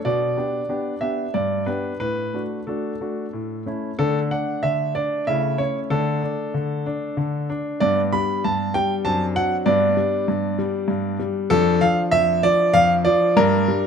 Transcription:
0.05 0.36 B2 medium
0.05 0.98 D5 medium
0.37 0.60 B3 soft
0.37 0.61 D4 soft
0.37 0.61 G4 soft
0.69 0.93 B3 soft
0.69 0.93 D4 soft
0.69 0.93 G4 medium
1.01 1.25 B3 soft
1.01 1.26 D4 soft
1.01 1.26 G4 medium
1.01 1.34 E5 medium
1.34 1.67 G2 medium
1.34 1.64 D5 medium
1.66 1.91 B3 soft
1.66 1.92 D4 soft
1.66 1.92 G4 soft
1.66 1.97 B4 medium
2.00 2.33 A2 medium
2.00 2.41 B4 medium
2.34 2.58 A3 soft
2.34 2.59 D4 soft
2.34 2.59 F#4 soft
2.67 2.92 A3 soft
2.67 2.92 D4 soft
2.67 2.92 F#4 soft
2.67 3.62 A4 medium
3.01 3.25 A3 soft
3.01 3.25 D4 soft
3.01 3.25 F#4 soft
3.33 3.66 A2 medium
3.66 3.90 A3 soft
3.66 3.90 C#4 soft
3.66 3.91 E4 soft
3.99 4.30 D3 medium
3.99 5.23 A3 medium
3.99 4.30 D4 soft
3.99 4.18 A4 medium
4.31 4.63 D4 soft
4.31 4.64 F#5 medium
4.63 4.95 D3 medium
4.63 4.92 E5 medium
4.95 5.27 D4 medium
4.95 5.24 D5 medium
5.27 5.59 C#3 medium
5.27 5.87 A3 soft
5.27 5.88 E4 soft
5.27 5.59 E5 medium
5.58 5.90 C#4 medium
5.58 5.78 C#5 medium
5.90 6.22 D3 medium
5.90 7.76 A3 soft
5.90 6.21 D4 medium
5.90 7.49 A4 medium
6.23 6.54 D4 medium
6.54 6.85 D3 medium
6.86 7.17 D4 medium
7.17 7.48 D3 medium
7.50 7.79 D4 medium
7.80 8.11 G2 medium
7.80 9.01 B3 medium
7.80 9.01 D4 medium
7.80 7.99 D5 loud
8.13 8.43 G3 medium
8.13 8.43 B5 medium
8.44 8.74 G2 medium
8.44 8.75 A5 medium
8.74 9.05 G3 medium
8.74 8.93 G5 loud
9.05 9.35 F#2 medium
9.05 9.63 C4 soft
9.05 9.63 D4 medium
9.05 9.23 A5 loud
9.36 9.66 F#3 medium
9.36 9.55 F#5 loud
9.66 9.96 G2 medium
9.66 11.48 B3 medium
9.66 11.48 D4 medium
9.66 11.16 D5 medium
9.97 10.27 G3 medium
10.28 10.58 G2 medium
10.59 10.89 G3 medium
10.88 11.19 G2 medium
11.20 11.50 G3 medium
11.50 11.81 F2 medium
11.50 13.33 D4 medium
11.50 11.82 A4 loud
11.81 12.12 F3 medium
11.81 12.00 F5 loud
12.11 12.43 F2 medium
12.11 12.44 E5 loud
12.43 12.74 F3 medium
12.43 12.75 D5 loud
12.74 13.05 F2 medium
12.74 12.93 F5 loud
13.05 13.36 F3 medium
13.05 13.37 D5 loud
13.37 13.68 G2 loud
13.37 13.87 D4 medium
13.37 13.87 A#4 loud
13.68 13.87 G3 medium

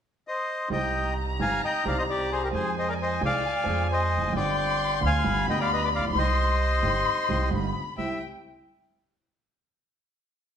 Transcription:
0.28 0.69 C5 medium
0.28 0.69 D#5 medium
0.68 1.36 C2 medium
0.68 1.36 C3 medium
0.68 1.35 D#3 medium
0.68 1.35 G3 medium
0.68 1.36 C4 medium
0.68 2.50 A#5 medium
0.72 1.37 G4 medium
0.72 1.14 D#5 medium
0.72 1.14 G5 medium
1.39 1.58 G1 medium
1.39 1.59 G2 medium
1.39 1.58 D#3 medium
1.39 1.58 G3 medium
1.39 1.59 C4 soft
1.39 1.59 G4 medium
1.39 1.62 F5 medium
1.39 1.61 G#5 medium
1.65 1.85 D#5 medium
1.65 1.87 G5 medium
1.83 2.50 C2 medium
1.83 2.50 C3 medium
1.83 2.49 D#3 medium
1.83 2.50 G3 medium
1.83 2.51 C4 medium
1.83 2.51 G4 medium
1.87 1.97 D5 medium
1.87 1.98 F5 medium
1.98 2.03 C5 medium
1.98 2.03 D#5 medium
2.10 2.30 G4 medium
2.10 2.32 D5 medium
2.32 2.42 G#4 medium
2.32 2.43 C5 medium
2.44 2.48 G4 soft
2.44 2.49 A#4 medium
2.51 3.18 F2 medium
2.51 3.18 F3 medium
2.51 3.17 G#3 medium
2.51 3.18 C4 medium
2.51 3.19 G#4 medium
2.51 2.75 G#4 medium
2.51 4.35 G#5 medium
2.55 2.75 C5 medium
2.78 2.88 C5 medium
2.78 2.89 D#5 medium
2.89 2.94 A#4 medium
2.89 2.94 D5 medium
3.02 3.22 C5 medium
3.02 3.22 D#5 medium
3.21 3.40 C2 medium
3.21 3.40 C3 medium
3.21 3.40 F3 medium
3.21 3.40 G#3 medium
3.21 3.41 C4 medium
3.21 3.40 G#4 medium
3.25 3.87 D5 medium
3.25 3.88 F5 medium
3.64 4.21 F2 medium
3.64 4.16 F2 medium
3.64 4.31 F3 medium
3.64 4.30 G#3 medium
3.64 4.31 C4 medium
3.68 4.32 G#4 medium
3.92 4.33 C5 medium
3.92 4.34 D#5 medium
4.17 4.22 E1 soft
4.17 4.24 E2 soft
4.23 4.27 F1 medium
4.23 4.29 F2 medium
4.28 4.34 F#1 medium
4.28 4.34 F#2 medium
4.28 4.98 D3 medium
4.33 4.99 G1 medium
4.33 4.99 G2 medium
4.33 4.98 G3 medium
4.33 4.99 C4 medium
4.33 5.00 F4 medium
4.33 5.00 D5 medium
4.33 5.25 C6 medium
4.37 5.00 G5 medium
5.00 5.21 D2 medium
5.00 5.21 D3 medium
5.00 5.20 G3 medium
5.00 5.21 C4 medium
5.00 5.21 F4 medium
5.06 5.46 F5 medium
5.06 5.47 G#5 medium
5.24 5.44 G1 medium
5.24 5.44 G2 medium
5.24 5.44 D3 medium
5.24 5.44 G3 medium
5.24 5.44 B3 medium
5.24 5.44 F4 medium
5.24 6.12 B5 loud
5.47 6.12 D2 medium
5.47 5.98 D2 medium
5.47 6.12 D3 medium
5.47 6.11 G3 medium
5.47 6.12 B3 medium
5.47 6.13 F4 medium
5.47 5.59 D#5 medium
5.47 5.60 G5 medium
5.60 5.70 D5 medium
5.60 5.72 F5 medium
5.73 5.82 B4 medium
5.73 5.83 D#5 medium
5.84 5.89 B4 soft
5.84 5.89 D5 medium
5.95 6.04 A1 soft
5.95 6.05 D5 medium
5.95 6.05 F5 medium
6.04 6.09 A#1 soft
6.04 6.10 A#1 soft
6.09 6.15 B1 medium
6.09 6.14 B1 medium
6.09 6.79 D#3 medium
6.15 6.80 C2 medium
6.15 6.80 C3 medium
6.15 6.80 G3 medium
6.15 6.80 C4 medium
6.15 6.81 G4 medium
6.15 7.49 C5 medium
6.15 7.49 D#5 medium
6.15 6.59 C6 medium
6.60 7.48 C6 medium
6.83 7.02 G1 medium
6.83 7.02 G2 medium
6.83 7.02 D#3 medium
6.83 7.02 G3 soft
6.83 7.02 C4 medium
6.83 7.03 G4 medium
7.29 7.48 C2 medium
7.29 7.48 C3 medium
7.29 7.48 D#3 medium
7.29 7.48 G3 medium
7.29 7.48 C4 medium
7.29 7.49 G4 medium
7.51 7.71 G1 medium
7.51 7.70 G2 medium
7.51 7.71 D3 medium
7.51 7.71 G3 soft
7.51 7.71 B3 soft
7.51 7.71 F4 medium
7.51 7.98 B5 medium
7.97 8.17 C2 soft
7.97 8.17 G3 soft
7.97 8.17 C4 soft
7.97 8.17 E4 medium
7.97 8.19 E5 medium
7.97 8.19 G5 medium

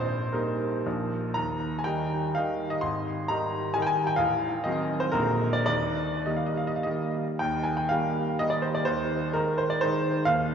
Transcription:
0.00 0.32 A#1 medium
0.00 0.32 C5 medium
0.32 0.82 G3 soft
0.32 0.82 A#3 soft
0.32 0.82 D#4 soft
0.32 0.85 A#4 medium
0.86 1.34 A#1 medium
0.86 1.32 F3 soft
0.86 1.32 A#3 soft
0.86 1.32 D4 soft
1.34 1.85 D#2 medium
1.34 1.78 A#5 medium
1.78 1.86 G#5 medium
1.84 2.32 D#3 soft
1.84 2.32 G3 soft
1.84 2.33 D#4 soft
1.84 2.36 G5 medium
2.35 2.78 D#3 soft
2.35 2.79 G3 soft
2.35 2.79 D#4 soft
2.35 2.71 F5 medium
2.70 2.82 D#5 medium
2.81 3.28 G#1 medium
2.81 3.29 C6 medium
3.28 3.72 D#3 soft
3.28 3.72 G3 soft
3.28 3.73 D#4 soft
3.28 3.75 A#5 medium
3.74 4.15 D#3 soft
3.74 4.16 G3 soft
3.74 4.16 D#4 medium
3.74 3.81 G#5 loud
3.82 3.89 G5 medium
3.87 4.08 G#5 loud
4.07 4.19 G5 medium
4.16 4.64 A1 medium
4.16 4.64 F5 loud
4.64 5.11 D#3 soft
4.64 5.11 F#3 soft
4.64 5.11 C4 medium
4.64 5.01 D#5 medium
5.00 5.14 C5 medium
5.12 5.66 A#1 medium
5.12 5.64 D3 soft
5.12 5.64 G#3 soft
5.12 5.64 A#3 soft
5.12 5.53 A#4 loud
5.53 5.64 D5 medium
5.66 6.25 D#2 medium
5.66 6.26 D5 loud
6.26 6.82 D#3 soft
6.26 6.82 G3 soft
6.26 6.83 A#3 soft
6.26 6.37 D#5 medium
6.37 6.47 F5 medium
6.46 6.57 D#5 medium
6.57 6.67 F5 medium
6.67 6.77 D#5 medium
6.76 6.86 F5 medium
6.83 7.37 D#3 soft
6.83 7.38 G3 soft
6.83 7.38 A#3 soft
6.83 7.14 D#5 medium
7.39 7.90 D#2 medium
7.39 7.65 G5 loud
7.64 7.77 G#5 medium
7.77 7.91 G5 medium
7.89 8.37 D#3 soft
7.89 8.37 G3 soft
7.89 8.37 A#3 soft
7.89 8.40 F5 medium
8.39 8.83 D#3 soft
8.39 8.83 G3 soft
8.39 8.83 A#3 medium
8.39 8.52 D#5 medium
8.50 8.63 D5 medium
8.62 8.75 C5 medium
8.75 8.87 D5 medium
8.85 9.34 D#2 medium
8.85 9.34 C5 loud
9.34 9.80 D#3 soft
9.34 9.80 G#3 soft
9.34 9.80 D#4 soft
9.34 9.59 A#4 medium
9.58 9.71 C5 medium
9.70 9.83 D5 medium
9.81 10.24 D#3 medium
9.81 10.24 G#3 medium
9.81 10.24 D#4 medium
9.81 10.27 C5 loud
10.26 10.55 D#2 medium
10.26 10.55 F5 loud

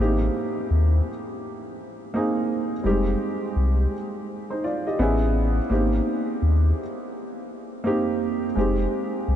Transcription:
0.00 0.30 G#1 loud
0.00 1.08 A#3 medium
0.00 1.09 C4 medium
0.00 1.09 D#4 medium
0.00 1.10 G4 medium
0.71 1.01 D#2 medium
2.14 2.72 A#3 medium
2.14 2.73 C4 medium
2.14 2.73 D#4 medium
2.14 2.74 G#4 medium
2.84 3.15 F1 loud
2.84 2.92 G3 medium
2.84 3.94 C4 medium
2.84 3.92 D#4 medium
2.84 3.93 G4 medium
2.90 3.97 G#3 medium
3.56 3.87 C2 medium
4.50 4.63 D#4 soft
4.50 4.62 C5 medium
4.64 4.85 F4 medium
4.64 4.85 D5 medium
4.87 5.20 G4 medium
4.87 5.20 D#5 medium
4.99 5.60 A1 medium
4.99 5.58 B3 medium
4.99 5.58 C#4 medium
4.99 5.59 E4 medium
4.99 5.59 G#4 medium
5.70 6.01 G#1 loud
5.70 6.79 A#3 medium
5.70 6.80 C4 medium
5.70 6.80 D#4 medium
5.70 6.81 G4 medium
6.42 6.73 D#2 medium
7.84 8.43 A#3 medium
7.84 8.44 C4 medium
7.84 8.44 D#4 medium
7.84 8.45 G4 medium
8.55 8.87 F1 loud
8.55 9.36 G#3 medium
8.55 9.36 C4 medium
8.55 9.36 D#4 medium
8.55 9.36 G4 medium
9.28 9.36 C2 loud

